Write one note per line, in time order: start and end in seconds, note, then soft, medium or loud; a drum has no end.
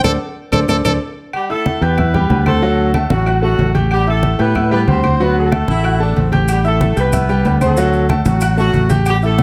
0.04 0.16 D2 loud
0.04 0.14 A4 loud
0.04 0.12 A4 loud
0.04 0.14 C5 loud
0.04 0.14 D5 loud
0.04 low conga loud
0.04 high timbale loud
0.04 claves loud
0.04 maracas medium
0.52 0.65 D2 loud
0.52 0.60 A4 medium
0.52 0.63 A4 medium
0.52 0.63 C5 loud
0.52 0.63 D5 medium
0.52 low conga loud
0.52 high timbale loud
0.52 claves loud
0.52 maracas medium
0.68 0.81 D2 loud
0.68 0.79 A4 medium
0.68 0.77 A4 loud
0.68 0.79 C5 loud
0.68 0.79 D5 loud
0.68 low conga loud
0.68 high timbale loud
0.68 claves loud
0.68 maracas loud
0.85 0.97 D2 medium
0.85 0.93 A4 loud
0.85 0.96 A4 medium
0.85 0.96 C5 medium
0.85 0.96 D5 loud
0.85 low conga loud
0.85 high timbale loud
0.85 claves loud
0.85 maracas loud
1.33 1.48 G3 medium
1.33 1.48 G4 loud
1.33 high conga soft
1.33 low agogo loud
1.33 claves medium
1.49 1.79 A3 medium
1.49 1.76 E4 medium
1.49 1.79 A4 loud
1.49 1.76 E5 medium
1.49 1.76 E6 medium
1.49 high conga soft
1.66 high conga loud
1.66 low agogo medium
1.81 2.26 E2 loud
1.81 2.46 B3 medium
1.81 1.95 G4 medium
1.81 2.46 B4 loud
1.81 1.95 G5 medium
1.81 1.95 G6 medium
1.81 high conga soft
1.81 low agogo medium
1.97 2.11 E4 medium
1.97 2.11 E5 medium
1.97 2.11 E6 medium
1.97 high conga soft
1.97 low conga loud
1.97 low agogo loud
1.97 claves medium
2.14 2.40 G3 medium
2.14 2.40 G4 medium
2.14 2.40 G5 medium
2.14 high conga soft
2.14 low conga medium
2.30 3.05 D2 loud
2.30 high conga loud
2.30 low timbale medium
2.30 low agogo medium
2.46 2.91 A3 medium
2.46 2.59 C4 medium
2.46 2.91 A4 loud
2.46 2.60 C5 medium
2.46 2.60 C6 medium
2.46 high conga medium
2.46 low agogo loud
2.46 claves medium
2.62 2.89 F#3 loud
2.62 2.89 F#4 loud
2.62 2.89 F#5 loud
2.62 high conga soft
2.78 high conga soft
2.94 3.21 A3 medium
2.94 3.21 A4 medium
2.94 3.21 A5 medium
2.94 high conga medium
2.94 low agogo loud
2.94 claves medium
3.10 3.55 A1 medium
3.10 3.40 F#3 medium
3.10 3.40 F#4 medium
3.10 high conga loud
3.10 low agogo medium
3.26 3.39 F#4 medium
3.26 3.40 F#5 medium
3.26 3.40 F#6 medium
3.26 high conga soft
3.26 low agogo loud
3.26 claves medium
3.42 3.72 F#3 medium
3.42 3.69 A3 medium
3.42 3.72 F#4 loud
3.42 3.69 A4 medium
3.42 3.69 A5 medium
3.42 high conga soft
3.58 4.33 A1 medium
3.58 high conga medium
3.58 low timbale medium
3.58 low agogo medium
3.74 4.01 G4 medium
3.74 4.01 G5 medium
3.74 4.01 G6 medium
3.74 high conga medium
3.74 low agogo medium
3.91 4.06 G3 medium
3.91 4.06 G4 loud
3.91 high conga soft
3.91 low agogo loud
3.91 claves medium
4.07 4.37 A3 medium
4.07 4.33 E4 medium
4.07 4.37 A4 loud
4.07 4.33 E5 medium
4.07 4.34 E6 medium
4.07 high conga soft
4.23 high conga medium
4.23 low agogo medium
4.39 4.84 A2 loud
4.39 4.69 B3 medium
4.39 4.52 G4 medium
4.39 4.69 B4 loud
4.39 4.52 G5 medium
4.39 4.53 G6 medium
4.39 high conga soft
4.39 low agogo medium
4.55 4.68 E4 medium
4.55 4.68 E5 medium
4.55 4.69 E6 medium
4.55 high conga soft
4.55 low conga medium
4.55 low agogo loud
4.55 claves medium
4.71 4.98 G3 medium
4.71 4.79 B3 medium
4.71 4.98 G4 loud
4.71 4.78 B4 loud
4.71 4.98 G5 loud
4.71 high conga soft
4.87 5.62 D2 loud
4.87 5.18 C4 medium
4.87 5.17 C5 loud
4.87 high conga medium
4.87 low timbale medium
4.87 low agogo loud
5.04 5.17 C4 medium
5.04 5.17 C5 medium
5.04 5.17 C6 medium
5.04 high conga medium
5.04 low agogo loud
5.04 claves medium
5.20 5.46 F#3 medium
5.20 5.36 B3 loud
5.20 5.47 F#4 loud
5.20 5.36 B4 loud
5.20 5.47 F#5 medium
5.20 high conga soft
5.36 6.02 A3 medium
5.36 6.02 A4 loud
5.36 high conga soft
5.52 5.78 A3 medium
5.52 5.79 A4 medium
5.52 5.79 A5 medium
5.52 high conga loud
5.52 low agogo loud
5.52 claves medium
5.68 6.13 A1 loud
5.68 5.98 E4 loud
5.68 high conga loud
5.68 low agogo medium
5.84 5.97 F#4 medium
5.84 5.97 F#5 medium
5.84 5.98 F#6 medium
5.84 high conga soft
5.84 low agogo loud
5.84 claves medium
6.00 6.26 A3 medium
6.00 6.15 D4 medium
6.00 6.27 A4 medium
6.00 6.27 A5 medium
6.00 high conga soft
6.16 6.91 A1 loud
6.16 6.41 C4 medium
6.16 high conga medium
6.16 low agogo medium
6.32 6.59 G4 medium
6.32 6.59 G5 loud
6.32 6.59 G6 medium
6.32 high conga medium
6.32 low agogo medium
6.48 6.64 G3 medium
6.48 6.64 G4 loud
6.48 high conga soft
6.48 low agogo loud
6.48 claves medium
6.48 maracas loud
6.64 6.95 A3 medium
6.64 6.91 E4 medium
6.64 6.95 A4 loud
6.64 6.91 E5 medium
6.64 6.91 E6 medium
6.64 high conga soft
6.64 maracas soft
6.81 high conga loud
6.81 low agogo medium
6.81 maracas soft
6.96 7.42 C2 loud
6.96 7.58 B3 medium
6.96 7.10 G4 medium
6.96 7.58 B4 loud
6.96 7.10 G5 medium
6.96 7.10 G6 medium
6.96 low agogo medium
6.96 maracas medium
7.13 7.26 E4 medium
7.13 7.26 E5 medium
7.13 7.26 E6 medium
7.13 high conga soft
7.13 low conga loud
7.13 low agogo loud
7.13 claves medium
7.13 maracas loud
7.29 7.56 G3 medium
7.29 7.56 G4 medium
7.29 7.56 G5 medium
7.29 high conga soft
7.29 maracas soft
7.45 8.20 D2 loud
7.45 high conga medium
7.45 low timbale medium
7.45 low agogo loud
7.45 maracas soft
7.61 8.07 A3 medium
7.61 7.74 C4 medium
7.61 8.07 A4 loud
7.61 7.75 C5 medium
7.61 7.75 C6 medium
7.61 high conga medium
7.61 low agogo loud
7.61 claves medium
7.61 maracas medium
7.77 8.04 F#3 loud
7.77 8.04 F#4 loud
7.77 8.04 F#5 loud
7.77 maracas medium
7.93 high conga soft
7.93 maracas soft
8.09 8.36 A3 medium
8.09 8.36 A4 medium
8.09 8.36 A5 medium
8.09 high conga loud
8.09 low agogo loud
8.09 claves medium
8.09 maracas soft
8.25 8.71 A1 loud
8.25 8.56 F#3 medium
8.25 8.55 F#4 medium
8.25 high conga loud
8.25 low agogo medium
8.25 maracas medium
8.41 8.55 F#4 medium
8.41 8.55 F#5 medium
8.41 8.55 F#6 medium
8.41 high conga soft
8.41 low agogo loud
8.41 claves medium
8.41 maracas loud
8.57 8.89 F#3 medium
8.57 8.84 A3 medium
8.57 8.88 F#4 loud
8.57 8.84 A4 medium
8.57 8.84 A5 medium
8.57 high conga soft
8.57 maracas soft
8.73 9.43 A1 loud
8.73 high conga medium
8.73 low agogo medium
8.73 maracas soft
8.89 9.16 G4 medium
8.89 9.16 G5 medium
8.89 9.17 G6 medium
8.89 high conga medium
8.89 low agogo medium
8.89 maracas medium
9.06 9.14 G3 medium
9.06 9.13 G4 loud
9.06 high conga soft
9.06 low agogo loud
9.06 claves medium
9.06 maracas loud
9.22 9.43 A3 medium
9.22 9.43 E4 medium
9.22 9.43 A4 loud
9.22 9.43 E5 medium
9.22 9.43 E6 medium
9.22 high conga soft
9.22 maracas soft
9.38 high conga loud
9.38 low agogo medium
9.38 maracas soft